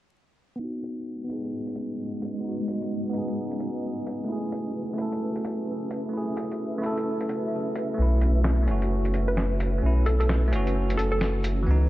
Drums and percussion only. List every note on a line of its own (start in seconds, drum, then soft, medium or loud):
0.83 closed hi-hat soft
1.30 closed hi-hat medium
1.44 closed hi-hat soft
1.67 closed hi-hat soft
1.76 closed hi-hat medium
2.22 closed hi-hat soft
2.68 closed hi-hat soft
2.82 closed hi-hat soft
3.14 closed hi-hat soft
3.28 closed hi-hat soft
3.51 closed hi-hat soft
3.60 closed hi-hat medium
4.07 closed hi-hat medium
4.52 closed hi-hat soft
4.98 closed hi-hat soft
5.12 closed hi-hat soft
5.36 closed hi-hat soft
5.45 closed hi-hat medium
5.91 closed hi-hat soft
6.37 closed hi-hat soft
6.52 closed hi-hat soft
6.83 closed hi-hat soft
6.98 closed hi-hat soft
7.21 closed hi-hat soft
7.29 closed hi-hat soft
7.75 closed hi-hat soft
8.21 closed hi-hat soft
8.44 snare loud
8.68 closed hi-hat soft
8.82 closed hi-hat soft
9.05 closed hi-hat soft
9.14 closed hi-hat soft
9.37 snare medium
9.60 closed hi-hat soft
10.06 closed hi-hat soft
10.21 closed hi-hat soft
10.29 snare medium
10.53 closed hi-hat soft
10.67 closed hi-hat soft
10.90 closed hi-hat soft
10.99 closed hi-hat soft
11.21 snare medium
11.44 closed hi-hat soft